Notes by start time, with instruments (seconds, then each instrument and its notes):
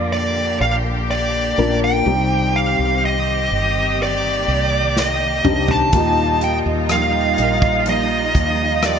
Already playing: fretless electric bass F2, felt piano A#2 F3 A#3 D4 F4 A#4, string section D3 A#3 F4, lead electric guitar D5
0.12 string section G4, lead electric guitar D5
0.60 fretless electric bass A#1, lead electric guitar F5
1.11 lead electric guitar D5
1.58 fretless electric bass A#1, felt piano A#3 D4 F4 A#4
1.84 lead electric guitar G5
2.06 fretless electric bass C2, felt piano C3 G3 C4 D#4 G4, string section D#3 C4 G4
2.56 lead electric guitar F5
2.79 fretless electric bass C2
3.05 lead electric guitar D#5
3.51 fretless electric bass G1
4.00 string section A#3, lead electric guitar D5
4.48 fretless electric bass C2
4.97 lead electric guitar D#5, snare
5.44 fretless electric bass C2, felt piano C4 D4 D#4 G4, mid tom
5.68 lead electric guitar A5, floor tom
5.93 fretless electric bass D#2, felt piano A#2 A#3 D#4 F4 G4, steel-string acoustic guitar D#3 F3 A#3 D#4 G4, string section G3 D#4 F4, kick, closed hi-hat
6.41 steel-string acoustic guitar A#3 D#4 G4, lead electric guitar G5, closed hi-hat
6.66 fretless electric bass D#2
6.89 steel-string acoustic guitar D#3 F3 A#3 D#4 G4, lead electric guitar F5, cross-stick, closed hi-hat
7.37 fretless electric bass A#1, steel-string acoustic guitar A#3 D#4 G4, closed hi-hat
7.62 kick
7.86 steel-string acoustic guitar F3 A#3 D#4 G4, lead electric guitar D#5, closed hi-hat
8.35 fretless electric bass D#2, kick, closed hi-hat
8.83 steel-string acoustic guitar D#3 F3 A#3 D#4 G4, lead electric guitar D5, cross-stick, closed hi-hat